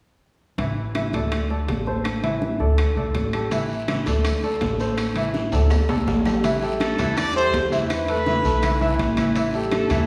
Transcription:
0.58 upright bass A1, grand piano E3 E4 E5, high bongo, high timbale
0.77 high conga
0.95 grand piano E3 E4 E5, high bongo, high conga, high timbale, claves
1.13 upright bass D2, grand piano A3 A4 D5, high bongo, high conga, high timbale
1.32 high bongo, high conga, high timbale, claves
1.50 grand piano A3 A4 D5, high bongo, high conga
1.68 upright bass A1, high bongo, low bongo, high timbale, low timbale
1.87 grand piano A3 A4 C5, high bongo, high conga
2.04 high bongo, high conga, high timbale, claves
2.23 grand piano E3 E4 E5, high conga, high timbale
2.42 high bongo, high conga
2.59 upright bass D2, grand piano A3 A4 D5, high bongo, high conga
2.78 high bongo, high conga, high timbale, claves
2.96 upright bass B1, grand piano A3 A4 D5, high bongo, high conga
3.15 upright bass A1, high bongo, low bongo, high conga, high timbale
3.33 grand piano G3 G4 A4, high bongo, high conga, high timbale, claves
3.51 grand piano E3 E4 E5, high bongo, high conga, high timbale, long guiro, maracas
3.69 high conga, maracas
3.88 grand piano E3 E4 E5, high bongo, high conga, high timbale, short guiro, claves, maracas
4.06 upright bass D2, grand piano A3 A4 D5, high bongo, high conga, high timbale, short guiro, maracas
4.24 high bongo, high conga, high timbale, long guiro, claves, maracas
4.43 grand piano A3 A4 D5, high bongo, high conga, maracas
4.61 upright bass A1, high bongo, low bongo, high conga, high timbale, low timbale, short guiro, maracas
4.79 grand piano A3 A4 C5, high bongo, high conga, short guiro, maracas
4.97 high bongo, high conga, high timbale, long guiro, claves, maracas
5.16 grand piano E3 E4 E5, high conga, high timbale, maracas
5.34 high bongo, high conga, short guiro, maracas
5.52 upright bass D2, grand piano A3 A4 D5, high bongo, high conga, high timbale, short guiro, maracas
5.70 high bongo, high conga, low timbale, long guiro, claves, maracas
5.89 upright bass B1, grand piano A3 A4 D5, high bongo, high conga, low timbale, maracas
6.06 upright bass A1, high bongo, low bongo, high conga, low timbale, short guiro, maracas
6.25 grand piano G3 G4 A4, high bongo, low conga, low timbale, short guiro, claves, maracas
6.44 grand piano E3 E4 E5, high bongo, high conga, high timbale, long guiro, maracas
6.62 grand piano G3 G4 A4, high conga, maracas
6.80 trumpet section A4, high bongo, high conga, high timbale, short guiro, claves, maracas
6.98 upright bass E2, grand piano E3 E4 E5, high bongo, high conga, high timbale, short guiro, maracas
7.17 trumpet section D5, high bongo, high conga, high timbale, long guiro, claves, maracas
7.35 grand piano G3 G4 A4, trumpet section C5, high bongo, high conga, maracas
7.53 upright bass E2, high bongo, low bongo, high timbale, low timbale, short guiro, maracas
7.72 grand piano E3 E4 E5, high bongo, high conga, short guiro, maracas
7.90 trumpet section B4, high bongo, high conga, high timbale, long guiro, claves, maracas
8.08 grand piano A3 A4 B4, high conga, high timbale, maracas
8.26 grand piano E3 E4 E5, high bongo, high conga, short guiro, maracas
8.44 upright bass B1, grand piano A3 A4 B4, high bongo, high conga, short guiro, maracas
8.63 grand piano E3 E4 E5, high bongo, high conga, high timbale, long guiro, claves, maracas
8.81 grand piano E3 E4 E5, high bongo, maracas
8.99 upright bass A1, high bongo, low bongo, high conga, high timbale, short guiro, maracas
9.17 grand piano E3 E4 E5, high bongo, high conga, high timbale, short guiro, claves, maracas
9.35 grand piano E3 E4 E5, high bongo, high timbale, long guiro, maracas
9.53 grand piano G3 G4 A4, high conga, maracas
9.71 trumpet section A4, high bongo, high conga, high timbale, short guiro, claves, maracas
9.90 upright bass E2, grand piano E3 E4 E5, high bongo, high conga, high timbale, short guiro, maracas

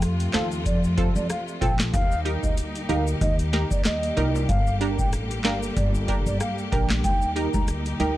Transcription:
Already playing: upright bass F2, string section C3 F3 A3 F4
0.02 cross-stick, closed hi-hat, shaker
0.20 closed hi-hat, shaker
0.33 upright bass D#2, synth pluck C4 F4 A4, flute F5, snare, clap, closed hi-hat
0.52 shaker
0.66 upright bass F2, flute D5, kick, closed hi-hat, shaker
0.84 shaker
0.97 synth pluck C4 F4 A4, kick, closed hi-hat
1.16 upright bass F2, flute D5, shaker
1.30 flute F5, cross-stick, closed hi-hat, shaker
1.48 shaker
1.61 upright bass A#1, synth pluck C4 F4 A4, flute G5, kick, closed hi-hat
1.79 snare, clap, shaker
1.93 upright bass D#2, string section G3 A#3 D#4 G4, flute F5, kick, closed hi-hat, shaker
2.12 shaker
2.25 synth pluck D#4 G4 A#4, closed hi-hat
2.43 upright bass D2, flute D#5, kick, shaker
2.57 closed hi-hat, shaker
2.75 closed hi-hat, shaker
2.89 upright bass D2, synth pluck D#4 G4 A#4, flute F5, closed hi-hat
3.07 shaker
3.21 upright bass D#2, flute D#5, kick, closed hi-hat, shaker
3.39 closed hi-hat, shaker
3.53 synth pluck D#4 G4 A#4, snare, closed hi-hat
3.71 upright bass D#2, flute D5, kick, shaker
3.84 flute D#5, cross-stick, snare, clap, closed hi-hat, shaker
4.03 closed hi-hat, shaker
4.17 upright bass C2, synth pluck D#4 G4 A#4, closed hi-hat, high timbale
4.35 high timbale, shaker
4.49 upright bass G1, string section D3, flute F5, kick, closed hi-hat, shaker
4.67 shaker
4.81 synth pluck D4 G4 A#4, closed hi-hat
4.99 upright bass A1, flute G5, kick, shaker
5.13 cross-stick, closed hi-hat, shaker
5.31 closed hi-hat, shaker
5.44 upright bass G1, synth pluck D4 G4 A#4, flute F5, snare, clap, closed hi-hat
5.63 shaker
5.76 upright bass G1, flute D5, kick, closed hi-hat, shaker
5.95 shaker
6.08 synth pluck D4 G4 A#4, kick, closed hi-hat
6.26 upright bass G1, flute D5, shaker
6.40 flute F5, cross-stick, closed hi-hat, shaker
6.58 shaker
6.72 upright bass A#1, synth pluck D4 G4 A#4, flute G5, kick, closed hi-hat
6.89 snare, clap, shaker
7.04 upright bass D#2, string section D#4, flute G5, kick, closed hi-hat, shaker
7.22 shaker
7.36 synth pluck D#4 G4 A#4, closed hi-hat
7.54 upright bass D2, flute A#5, kick, shaker
7.68 cross-stick, closed hi-hat, shaker
7.86 closed hi-hat, shaker
8.00 upright bass D2, synth pluck D#4 G4 A#4, flute G5, closed hi-hat

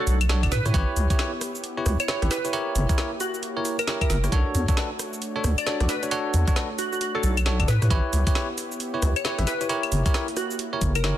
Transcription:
Already playing: analog synth pad A3 D4 F#4 C#5
0.00 tine electric piano D4 F#4 A4 C#5, synth pluck A4
0.07 wobble bass B1, open hi-hat, cabasa
0.21 closed hi-hat, cabasa, claves
0.29 tine electric piano D4 F#4 A4 C#5, snare, cabasa
0.43 wobble bass F#1, tine electric piano D4 F#4 A4 D5, kick, closed hi-hat, claves
0.52 wobble bass A2, analog synth pad B3 E4 G4 C#5, synth pluck B4, snare, open hi-hat, cabasa
0.66 wobble bass A2, tine electric piano E4 G4 B4 C#5, cross-stick, closed hi-hat, cabasa
0.74 wobble bass A1, tine electric piano E4 G4 B4 C#5, kick, closed hi-hat, cabasa
0.96 wobble bass C#2, open hi-hat, cabasa
1.10 tine electric piano E4 G4 B4 C#5, kick, closed hi-hat, cabasa
1.19 tine electric piano E4 G4 B4 C#5, snare, cabasa
1.41 cross-stick, open hi-hat, cabasa
1.55 cabasa
1.64 closed hi-hat, cabasa
1.77 tine electric piano E4 G4 B4 C#5
1.86 wobble bass C#2, cross-stick, open hi-hat, cabasa
2.00 synth pluck C#5, closed hi-hat, cabasa, claves
2.08 tine electric piano E4 G4 B4 C#5, synth pluck C#5, snare, cabasa
2.22 wobble bass A1, tine electric piano E4 G4 B4 E5, cross-stick, closed hi-hat
2.31 synth pluck B4, snare, open hi-hat, cabasa
2.45 tine electric piano E4 G4 B4 C#5, closed hi-hat, cabasa
2.53 analog synth pad A#3 G4, tine electric piano E4 G4 A#4 C#5, closed hi-hat, cabasa
2.75 wobble bass F#1, open hi-hat, cabasa
2.89 tine electric piano E4 G4 A#4 C#5, kick, closed hi-hat, cabasa
2.98 tine electric piano E4 G4 A#4 C#5, snare, cabasa
3.20 synth pluck F#4, open hi-hat, cabasa
3.34 cabasa
3.43 closed hi-hat, cabasa
3.57 tine electric piano E4 G4 A#4 C#5
3.65 open hi-hat, cabasa
3.79 synth pluck A#4, closed hi-hat, cabasa, claves
3.87 tine electric piano E4 G4 A#4 C#5, snare, cabasa
4.01 tine electric piano E4 G4 A#4 E5, synth pluck A#4, kick, closed hi-hat, claves
4.10 wobble bass F#1, synth pluck A#4, snare, open hi-hat, cabasa
4.24 tine electric piano E4 G4 A#4 C#5, cross-stick, closed hi-hat, cabasa
4.32 wobble bass B1, analog synth pad A3 D4 F#4, tine electric piano D4 F#4 A4 C#5, kick, closed hi-hat, cabasa
4.55 wobble bass E2, open hi-hat, cabasa
4.68 tine electric piano D4 F#4 A4 C#5, kick, closed hi-hat, cabasa
4.77 tine electric piano D4 F#4 A4 B4, snare, cabasa
4.99 cross-stick, open hi-hat, cabasa
5.13 cabasa
5.22 closed hi-hat, cabasa
5.36 tine electric piano D4 F#4 A4 C#5
5.44 wobble bass D2, cross-stick, open hi-hat, cabasa
5.58 synth pluck D5, closed hi-hat, cabasa, claves
5.66 tine electric piano D4 F#4 A4 C#5, synth pluck D5, snare, cabasa
5.80 wobble bass B1, tine electric piano D4 F#4 A4 D5, cross-stick, closed hi-hat
5.89 synth pluck B4, snare, open hi-hat, cabasa
6.03 tine electric piano D4 F#4 A4 C#5, closed hi-hat, cabasa
6.11 tine electric piano D4 F#4 A4 C#5, closed hi-hat, cabasa
6.34 wobble bass E2, open hi-hat, cabasa
6.48 tine electric piano D4 F#4 A4 C#5, kick, closed hi-hat, cabasa
6.56 tine electric piano D4 F#4 A4 B4, snare, cabasa
6.79 synth pluck F#4, open hi-hat, cabasa
6.93 synth pluck F#4, cabasa
7.01 synth pluck F#4, closed hi-hat, cabasa
7.15 tine electric piano D4 F#4 A4 C#5, synth pluck A4
7.23 wobble bass B1, open hi-hat, cabasa
7.37 closed hi-hat, cabasa, claves
7.46 tine electric piano D4 F#4 A4 C#5, snare, cabasa
7.60 wobble bass F#1, tine electric piano D4 F#4 A4 D5, kick, closed hi-hat, claves
7.68 wobble bass A2, analog synth pad B3 E4 G4, synth pluck B4, snare, open hi-hat, cabasa
7.82 wobble bass A2, tine electric piano E4 G4 B4 C#5, cross-stick, closed hi-hat, cabasa
7.90 wobble bass A1, tine electric piano E4 G4 B4 C#5, kick, closed hi-hat, cabasa
8.13 wobble bass C#2, open hi-hat, cabasa
8.27 tine electric piano E4 G4 B4 C#5, kick, closed hi-hat, cabasa
8.35 tine electric piano E4 G4 B4 C#5, snare, cabasa
8.58 open hi-hat, cabasa
8.72 cabasa
8.80 closed hi-hat, cabasa
8.94 tine electric piano E4 G4 B4 C#5
9.02 wobble bass C#2, cross-stick, open hi-hat, cabasa
9.16 synth pluck C#5, closed hi-hat, cabasa, claves
9.25 tine electric piano E4 G4 B4 C#5, synth pluck C#5, snare, cabasa
9.39 wobble bass A1, tine electric piano E4 G4 B4 E5, cross-stick, closed hi-hat
9.47 synth pluck B4, snare, open hi-hat, cabasa
9.61 tine electric piano E4 G4 B4 C#5, closed hi-hat, cabasa
9.69 analog synth pad A#3 E4, tine electric piano E4 G4 A#4 C#5, closed hi-hat, cabasa
9.83 closed hi-hat, claves
9.92 wobble bass F#1, open hi-hat, cabasa
10.06 tine electric piano E4 G4 A#4 C#5, kick, closed hi-hat, cabasa
10.14 tine electric piano E4 G4 A#4 C#5, snare, cabasa
10.28 open hi-hat
10.37 synth pluck F#4, cross-stick, open hi-hat, cabasa
10.51 cabasa
10.59 closed hi-hat, cabasa
10.73 tine electric piano E4 G4 A#4 C#5
10.81 wobble bass F#1, kick, open hi-hat, cabasa
10.95 synth pluck A#4, closed hi-hat, cabasa, claves
11.04 tine electric piano E4 G4 A#4 C#5, snare, cabasa

